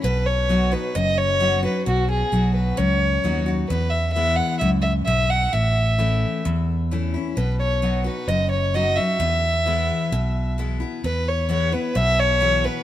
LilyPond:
<<
  \new Staff \with { instrumentName = "Fiddle" } { \time 4/4 \key e \major \tempo 4 = 131 b'8 cis''4 b'8 dis''8 cis''4 b'8 | fis'8 gis'4 b'8 cis''4. r8 | b'8 e''8 e''8 fis''8 e''8 e''8 e''8 fis''8 | e''2 r2 |
b'8 cis''4 b'8 dis''8 cis''8 dis''8 e''8~ | e''2. r4 | b'8 cis''8 cis''8 b'8 e''8 cis''4 b'8 | }
  \new Staff \with { instrumentName = "Steel-string acoustic guitar" } { \time 4/4 \key e \major << { r4 <fis b dis' fis'>8 <dis' fis'>8 r4 <fis b dis' fis'>8 <dis' fis'>8 | r4 <fis b dis' fis'>4 r4 <fis b dis' fis'>8 <dis' fis'>8 | r4 <e gis b e'>4 r2 | r4 <e a cis' e'>4 r4 <e a cis' e'>8 <cis' e'>8 |
r4 <fis b dis' fis'>8 <dis' fis'>8 r4 <fis b dis' fis'>8 <dis' fis'>8 | r4 <e gis b e'>4 r4 <e gis b e'>8 <b e'>8 | r4 <e gis b e'>8 <b e'>8 r4 <e gis b e'>8 <b e'>8 | } \\ { b,2 fis,2 | b,2 fis,2 | e,2 fis,4 gis,4 | a,2 e,2 |
b,2 fis,2 | e,2 b,2 | e,2 b,2 | } >> }
  \new Staff \with { instrumentName = "Fingered electric bass" } { \clef bass \time 4/4 \key e \major b,,2 fis,,2 | b,,4 b,,4 cis,4 dis,4 | e,2 cis,4 b,,4 | a,,2 e,2 |
b,,2 fis,,2 | e,2 b,,2 | e,2 b,,2 | }
>>